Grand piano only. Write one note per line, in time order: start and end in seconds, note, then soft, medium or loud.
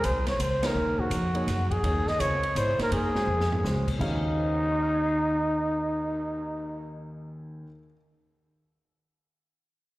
0.62 1.09 A#3 medium
0.62 1.09 D#4 medium
0.62 1.09 G#4 medium
0.62 1.09 C#5 medium
1.34 1.46 A#3 medium
1.34 1.46 D#4 medium
1.34 1.46 G#4 medium
1.34 1.47 C#5 medium
1.83 2.04 A#3 medium
1.83 2.04 D#4 medium
1.83 2.05 G#4 medium
1.83 2.05 C#5 medium
2.19 2.40 C4 medium
2.19 2.41 F4 medium
2.19 2.41 A#4 medium
2.19 2.41 D#5 medium
2.55 2.76 B3 medium
2.55 2.76 E4 medium
2.55 2.77 A4 medium
2.55 2.77 D5 medium
2.78 3.10 A#3 medium
2.78 3.10 D#4 medium
2.78 3.10 G#4 medium
2.78 3.10 C#5 medium
3.15 3.26 G#3 medium
3.15 3.26 C#4 medium
3.15 3.27 F#4 medium
3.15 3.27 C5 medium
3.64 3.85 G#3 medium
3.64 3.85 C#4 medium
3.64 3.85 F#4 medium
3.64 3.85 C5 medium
3.99 7.65 D#2 medium
3.99 7.66 D#3 medium
3.99 7.66 C#4 medium
3.99 7.67 F#4 medium
3.99 7.67 G#4 medium
3.99 7.66 F5 medium
4.37 7.62 C5 soft
4.44 7.66 D#5 soft
4.53 7.70 F#5 soft
4.61 7.74 A#5 soft
4.72 7.80 C#6 soft
4.82 7.85 F6 soft
4.94 7.91 G#6 soft
5.06 7.97 C7 soft